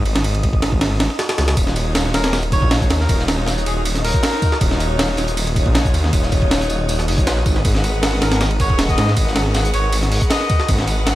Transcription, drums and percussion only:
0.06 ride
0.16 snare, ride
0.24 ride
0.35 ride
0.43 kick, ride
0.53 kick
0.62 snare, ride
0.72 kick
0.81 snare, ride
0.91 snare
1.00 snare, ride
1.10 snare
1.19 snare, ride
1.29 snare, ride
1.38 snare, ride
1.48 snare, ride
1.57 kick, ride, tambourine
1.67 snare
1.76 ride, tambourine
1.95 snare, ride, tambourine
2.05 snare
2.14 snare, ride, tambourine
2.24 snare, closed hi-hat, ride
2.33 snare, ride, tambourine
2.43 ride
2.52 kick, ride, tambourine
2.62 kick
2.71 snare, ride, tambourine
2.81 kick, closed hi-hat
2.90 snare, ride, tambourine
3.00 snare
3.09 kick, ride, tambourine
3.19 snare
3.28 snare, ride, tambourine
3.38 snare
3.47 snare, ride, tambourine
3.58 closed hi-hat
3.66 ride, tambourine
3.85 ride, tambourine
3.95 snare, closed hi-hat
4.04 open hi-hat, ride
4.14 kick, closed hi-hat
4.23 snare, ride, tambourine
4.33 snare
4.42 kick, ride, tambourine
4.52 snare
4.61 kick, ride, tambourine
4.71 snare
4.80 ride, tambourine
4.99 snare, ride, tambourine
5.09 snare
5.17 snare, ride, tambourine
5.28 closed hi-hat
5.37 ride, tambourine
5.47 ride
5.56 kick, ride, tambourine
5.66 kick
5.75 snare, ride, tambourine
5.85 kick, closed hi-hat
5.94 ride, tambourine
6.04 snare
6.13 kick, ride, tambourine
6.23 snare
6.32 kick, ride, tambourine
6.42 kick
6.51 snare, ride, tambourine
6.61 snare, closed hi-hat
6.69 ride, tambourine
6.89 ride, tambourine
6.99 snare, closed hi-hat
7.08 open hi-hat, ride
7.18 kick, closed hi-hat
7.27 snare, ride, tambourine
7.37 snare
7.46 kick, ride, tambourine
7.56 snare
7.65 kick, ride, tambourine
7.75 snare
7.84 ride, tambourine
8.03 snare, ride, tambourine
8.13 snare
8.22 snare, ride, tambourine
8.32 snare, closed hi-hat, ride
8.41 snare, ride, tambourine
8.51 ride
8.60 kick, ride, tambourine
8.70 kick
8.79 snare, ride, tambourine
8.89 kick, closed hi-hat
8.98 snare, ride, tambourine
9.07 snare
9.17 kick, ride, tambourine
9.28 snare
9.36 snare, ride, tambourine
9.46 snare
9.54 snare, ride, tambourine
9.65 closed hi-hat
9.74 ride, tambourine
9.93 ride, tambourine
10.03 snare, closed hi-hat
10.12 open hi-hat, ride
10.21 kick, closed hi-hat
10.30 snare, ride, tambourine
10.41 snare
10.49 kick, ride, tambourine
10.60 snare
10.68 kick, ride, tambourine
10.79 snare
10.88 ride, tambourine
11.07 snare, ride, tambourine

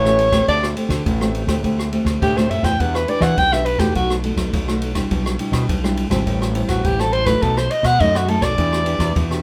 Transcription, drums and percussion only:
0.05 cross-stick
0.19 ride
0.32 kick, cross-stick, ride
0.48 kick, ride
0.63 cross-stick
0.77 ride
0.90 kick, cross-stick, ride
1.06 kick, ride
1.21 cross-stick
1.35 ride
1.48 kick, cross-stick, ride
1.64 kick, ride
1.79 cross-stick
1.93 ride
2.06 kick, cross-stick, ride
2.22 kick, ride
2.37 cross-stick
2.51 ride
2.64 kick, cross-stick, ride
2.80 kick, ride
2.95 cross-stick
3.08 ride
3.22 kick, cross-stick, ride
3.38 kick, ride
3.53 cross-stick
3.66 ride
3.79 kick, cross-stick, ride
3.95 kick, ride
4.10 cross-stick
4.24 ride
4.37 kick, cross-stick, ride
4.53 kick, ride
4.68 cross-stick
4.82 ride
4.95 kick, cross-stick, ride
5.11 kick, ride
5.26 cross-stick
5.39 ride
5.53 kick, cross-stick, ride
5.69 kick, ride
5.84 cross-stick
5.97 ride
6.11 kick, cross-stick, ride
6.27 kick, ride
6.42 cross-stick
6.55 ride
6.69 kick, cross-stick, ride
6.84 kick, ride
6.99 cross-stick
7.13 ride
7.26 kick, cross-stick, ride
7.42 kick, ride
7.57 cross-stick
7.71 ride
7.84 kick, cross-stick, ride
8.00 kick, ride
8.15 cross-stick
8.28 ride
8.42 kick, cross-stick, ride
8.58 kick, ride
8.73 cross-stick
8.86 ride
9.00 kick, cross-stick, ride
9.16 kick, ride
9.31 cross-stick

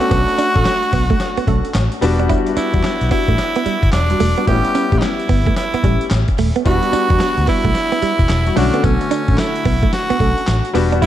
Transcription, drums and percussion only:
0.01 closed hi-hat
0.11 kick, closed hi-hat, tambourine, cowbell
0.28 closed hi-hat
0.38 closed hi-hat, tambourine
0.56 kick, closed hi-hat
0.65 snare, clap, closed hi-hat, tambourine, cowbell
0.83 closed hi-hat
0.93 kick, open hi-hat, tambourine
1.10 kick, closed hi-hat
1.20 snare, closed hi-hat, tambourine, cowbell
1.37 closed hi-hat
1.47 kick, closed hi-hat
1.65 closed hi-hat
1.74 snare, clap, closed hi-hat, tambourine, cowbell
1.92 closed hi-hat
2.02 open hi-hat, tambourine
2.19 closed hi-hat
2.29 kick, closed hi-hat, tambourine, cowbell
2.47 closed hi-hat
2.57 closed hi-hat, tambourine
2.74 kick, closed hi-hat
2.83 snare, clap, closed hi-hat, tambourine, cowbell
3.01 closed hi-hat
3.11 kick, open hi-hat, tambourine
3.28 kick, closed hi-hat
3.38 snare, closed hi-hat, tambourine, cowbell
3.56 closed hi-hat
3.66 closed hi-hat
3.83 kick, closed hi-hat
3.92 snare, clap, closed hi-hat, tambourine, cowbell
4.10 closed hi-hat
4.20 open hi-hat, tambourine
4.38 closed hi-hat
4.47 kick, closed hi-hat, tambourine, cowbell
4.65 closed hi-hat
4.75 closed hi-hat, tambourine
4.92 kick, closed hi-hat
5.02 snare, clap, closed hi-hat, tambourine, cowbell
5.19 closed hi-hat
5.29 kick, open hi-hat, tambourine
5.46 kick, closed hi-hat
5.56 snare, closed hi-hat, tambourine, cowbell
5.74 closed hi-hat
5.84 kick, closed hi-hat
6.01 closed hi-hat
6.11 snare, clap, closed hi-hat, tambourine, cowbell
6.28 kick, closed hi-hat
6.38 open hi-hat, tambourine
6.56 closed hi-hat
6.65 kick, closed hi-hat, tambourine
6.83 closed hi-hat
6.93 closed hi-hat, tambourine
7.10 kick, closed hi-hat
7.20 snare, clap, closed hi-hat, tambourine
7.38 closed hi-hat
7.47 kick, open hi-hat, tambourine
7.65 kick, closed hi-hat
7.75 snare, closed hi-hat, tambourine
7.92 closed hi-hat
8.02 closed hi-hat
8.19 kick, closed hi-hat
8.29 snare, clap, closed hi-hat, tambourine
8.47 closed hi-hat
8.57 open hi-hat, tambourine
8.74 closed hi-hat
8.84 kick, closed hi-hat, tambourine
9.01 closed hi-hat
9.11 closed hi-hat, tambourine
9.28 kick, closed hi-hat
9.38 snare, clap, closed hi-hat, tambourine
9.56 closed hi-hat
9.65 kick, open hi-hat, tambourine
9.83 kick, closed hi-hat
9.93 snare, closed hi-hat, tambourine
10.10 closed hi-hat
10.20 kick, closed hi-hat
10.38 closed hi-hat
10.47 snare, clap, closed hi-hat, tambourine
10.65 closed hi-hat
10.75 open hi-hat, tambourine
10.92 closed hi-hat
11.02 kick, closed hi-hat, tambourine

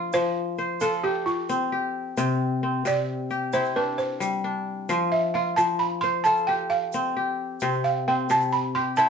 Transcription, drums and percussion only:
0.13 shaker
0.58 shaker
0.80 shaker
0.93 shaker
1.27 shaker
1.49 shaker
2.17 shaker
2.86 shaker
3.30 shaker
3.53 shaker
3.65 shaker
3.98 shaker
4.21 shaker
4.89 shaker
5.57 shaker
6.03 shaker
6.24 shaker
6.36 shaker
6.70 shaker
6.92 shaker
7.60 shaker
7.84 shaker
8.29 shaker
8.41 shaker
8.52 shaker
8.97 shaker

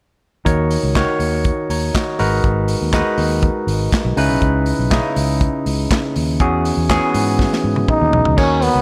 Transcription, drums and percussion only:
0.46 kick, closed hi-hat
0.71 open hi-hat
0.95 kick, snare, clap
1.20 open hi-hat
1.44 kick, closed hi-hat
1.70 open hi-hat
1.95 kick, snare, clap, closed hi-hat
2.19 open hi-hat
2.44 kick, closed hi-hat
2.68 open hi-hat
2.93 kick, snare, clap, closed hi-hat
3.18 open hi-hat
3.42 kick, closed hi-hat
3.68 open hi-hat
3.92 kick, snare, clap, closed hi-hat
4.17 open hi-hat
4.42 kick, closed hi-hat
4.66 open hi-hat
4.91 kick, snare, clap, closed hi-hat
5.16 open hi-hat
5.41 kick, closed hi-hat
5.66 open hi-hat
5.91 kick, snare, clap, closed hi-hat
6.16 open hi-hat
6.40 kick, closed hi-hat
6.65 open hi-hat
6.90 kick, snare, clap, closed hi-hat
7.14 open hi-hat
7.39 kick, snare
7.53 snare
7.76 high tom
7.88 kick, mid tom
8.13 floor tom
8.25 floor tom
8.38 kick, crash
8.62 open hi-hat

